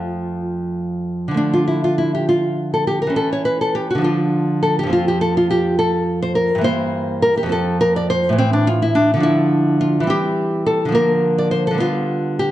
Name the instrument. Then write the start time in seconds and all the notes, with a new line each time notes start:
nylon-string guitar
Already playing: F2 F3 A3 F4
1.28 D3 F3
1.34 A3 D4
1.53 F4
1.68 E4
1.84 F4
1.98 E4
2.15 G4
2.29 F4
2.74 A4
2.87 G4
3.02 A#4
3.07 E3 C#4
3.16 A4
3.33 C#5
3.45 B4
3.61 A4
3.75 G4
3.90 F#4
3.95 D3 F3
4.02 D4 F4
4.63 A4
4.79 G4
4.83 F2 F3
4.90 C4 F4
5.08 G4
5.21 A4
5.37 F4
5.51 G4
5.79 A4
6.22 C5
6.35 A#4
6.55 G2 E3
6.61 A#3 C5
7.22 A#4
7.37 G4
7.43 F2 F3
7.49 C4 A4
7.81 A#4
7.96 D5
8.10 C5
8.29 A2 E3
8.38 C4
8.53 D4
8.67 F4
8.82 E4
8.95 D4
9.14 D3 F3
9.20 D4 E4
9.81 F4
10.00 E3 G3
10.07 C4 G4
10.66 A4
10.85 D3 F3
10.92 A#3 A#4
11.38 D5
11.51 C5
11.67 D3 A4
11.74 G3 B3
11.80 F4
12.39 G4